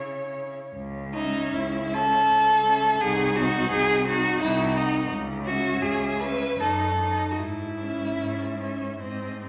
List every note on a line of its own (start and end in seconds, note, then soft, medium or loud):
0.00 0.51 C#3 soft
0.00 0.55 E4 soft
0.00 0.35 C#5 medium
0.00 0.76 C#5 soft
0.76 1.44 C#2 medium
1.14 1.91 C#4 medium
1.14 1.56 D#4 medium
1.14 1.91 E5 medium
1.53 2.21 C#2 medium
1.53 1.96 E4 medium
1.92 2.63 C#4 medium
1.92 3.03 A4 loud
1.92 2.64 E5 medium
2.29 2.92 C#2 medium
2.65 3.00 C#4 medium
2.65 3.00 E5 medium
3.00 3.63 C2 medium
3.00 3.35 D#4 medium
3.00 3.37 G#4 loud
3.00 3.35 F#5 medium
3.36 4.06 D#4 medium
3.36 3.70 F#4 loud
3.36 4.06 F#5 medium
3.71 4.34 C2 medium
3.71 4.06 G#4 loud
4.07 4.76 D#4 medium
4.07 4.42 F#4 loud
4.07 4.77 F#5 medium
4.43 5.04 C2 medium
4.43 4.79 E4 loud
4.77 5.12 D#4 loud
4.77 5.11 D#4 medium
4.77 5.11 F#5 medium
5.12 5.74 C#2 medium
5.46 6.19 C#4 medium
5.46 5.84 F#4 loud
5.46 6.19 E5 medium
5.82 6.51 C#2 medium
5.82 6.22 G#4 medium
6.20 6.59 C#4 medium
6.20 6.62 B4 medium
6.20 6.59 E5 medium
6.60 7.29 F#2 medium
6.60 6.98 D#4 medium
6.60 7.33 A4 medium
6.60 6.98 D#5 medium
6.99 7.38 D#4 soft
6.99 7.38 D#5 medium
7.32 7.40 F#4 soft
7.38 8.10 G#2 medium
7.38 8.99 E4 medium
7.80 8.58 C#4 soft
7.80 8.58 E5 soft
8.20 8.90 G#2 medium
8.59 8.99 C#4 soft
8.59 8.99 E5 soft
8.99 9.49 G#2 soft
8.99 9.39 C4 soft
8.99 9.40 D#5 soft
9.40 9.49 C4 soft
9.40 9.49 D#5 soft